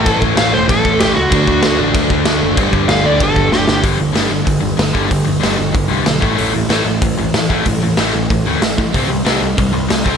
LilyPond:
<<
  \new Staff \with { instrumentName = "Lead electric guitar" } { \time 4/4 \key a \mixolydian \tempo 4 = 188 a'8 r8 f''8 c''8 a'4 g'8 fis'8~ | fis'4. r2 r8 | r4 f''8 d''8 a'4 g'8 g'8 | \key a \dorian r1 |
r1 | r1 | r1 | r1 | }
  \new Staff \with { instrumentName = "Distorted electric guitar" } { \clef bass \time 4/4 \key a \mixolydian <a, e a>4 <a, e a>2~ <a, e a>8 r8 | <d a d'>4. <d a d'>2~ <d a d'>8 | <g, d g>4. <g, d g>2~ <g, d g>8 | \key a \dorian <g, d g>8 <g, d>8 <g, d g>8 <g, d>8 <g, d>8 <g, d>8 <g, d>8 <g, d g>8 |
<g, d>8 <g, d>8 <g, d g>8 <g, d>8 <g, d>8 <g, d g>8 <g, d>8 <a, e a>8 | <a, e a>8 <a, e>8 <a, e a>8 <a, e>8 <a, e>8 <a, e>8 <a, e>8 <a, e a>8 | <a, e>8 <a, e>8 <a, e a>8 <a, e>8 <a, e>8 <a, e a>8 <a, e>8 <a, e>8 | <c g c'>8 <c g>8 <c g c'>8 <c g>8 <c g>8 <c g>8 <c g>8 <c g c'>8 | }
  \new Staff \with { instrumentName = "Overdriven electric guitar" } { \clef bass \time 4/4 \key a \mixolydian <a, e a>4 <a, e a>2~ <a, e a>8 r8 | <d a d'>4. <d a d'>2~ <d a d'>8 | <g, d g>4. <g, d g>2~ <g, d g>8 | \key a \dorian <g, d g>8 <g, d>8 <g, d g>8 <g, d>8 <g, d>8 <g, d>8 <g, d>8 <g, d g>8 |
<g, d>8 <g, d>8 <g, d g>8 <g, d>8 <g, d>8 <g, d g>8 <g, d>8 <a, e a>8 | <a, e a>8 <a, e>8 <a, e a>8 <a, e>8 <a, e>8 <a, e>8 <a, e>8 <a, e a>8 | <a, e>8 <a, e>8 <a, e a>8 <a, e>8 <a, e>8 <a, e a>8 <a, e>8 <a, e>8 | <c g c'>8 <c g>8 <c g c'>8 <c g>8 <c g>8 <c g>8 <c g>8 <c g c'>8 | }
  \new Staff \with { instrumentName = "Picked electric bass" } { \clef bass \time 4/4 \key a \mixolydian a,,8 a,,8 a,,8 e,,8 a,,4 a,,8 cis,8 | d,8 d,8 d,8 a,,8 d,4 d,8 fis,,8 | g,,8 g,,8 g,,8 d,8 g,,4 g,,8 g,,8 | \key a \dorian g,,8 g,,8 g,,8 g,,8 g,,8 g,,8 g,,8 g,,8 |
g,,8 g,,8 g,,8 g,,8 g,,8 c,8 b,,8 a,,8 | a,,8 a,,8 a,,8 a,,8 a,,8 a,,8 a,,8 a,,8 | a,,8 a,,8 a,,8 a,,8 a,,8 d,8 a,,8 a,,8 | c,8 c,8 c,8 c,8 c,8 c,8 c,8 c,8 | }
  \new DrumStaff \with { instrumentName = "Drums" } \drummode { \time 4/4 <cymc bd>8 bd8 <cymc sn>4 <cymc bd>8 bd8 <cymc sn>4 | <cymc bd>8 bd8 <cymc sn>4 <cymc bd>8 bd8 <cymc sn>4 | <cymc bd>8 bd8 <cymc sn>4 <cymc bd>8 bd8 sn8 sn8 | <hho bd>4 <hho sn>4 <hho bd>4 <hho sn>8 bd8 |
<hho bd>4 <hho sn>4 <hho bd>4 <hho sn>8 bd8 | hho4 <hho sn>4 <hho bd>4 <hho sn>8 bd8 | <hho bd>4 <hho sn>4 <hho bd>4 <hho sn>8 bd8 | <hho bd>4 <hho sn>4 <hho bd>4 <hho sn>8 bd8 | }
>>